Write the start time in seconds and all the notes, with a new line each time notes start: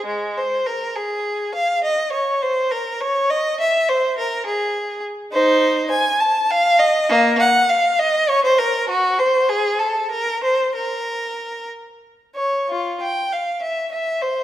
0.05 G#3
0.37 C5
0.66 A#4
0.96 G#4
1.54 F5
1.83 D#5
2.12 C#5
2.42 C5
2.71 A#4
3.01 C#5
3.30 D#5
3.60 E5
3.89 C5
4.18 A#4
4.46 G#4
5.32 D#4 C5
5.91 G#5
6.20 A5
6.50 F5
6.79 D#5
7.09 A#3
7.40 F#5
7.69 F5
7.99 D#5
8.29 C#5
8.44 C5
8.58 A#4
8.89 F#4
9.19 C5
9.49 G#4
9.78 A4
10.11 A#4
10.43 C5
10.75 A#4
12.35 C#5
12.69 F4
13.01 G5
13.32 F5
13.62 E5
13.91 E5
14.22 C5